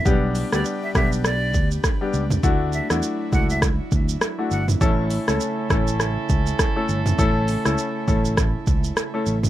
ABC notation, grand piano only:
X:1
M:4/4
L:1/16
Q:"Swing 16ths" 1/4=101
K:Amix
V:1 name="Grand piano"
[G,B,DG]3 [G,B,DG]3 [G,B,DG]2 z4 z [G,B,DG] z2 | [A,DEF]3 [A,DEF]3 [A,DEF]2 z4 z [A,DEF] z2 | [A,CEA]3 [A,CEA]3 [A,CEA]2 z4 z [A,CEA] z2 | [A,CEA]3 [A,CEA]3 [A,CEA]2 z4 z [A,CEA] z2 |]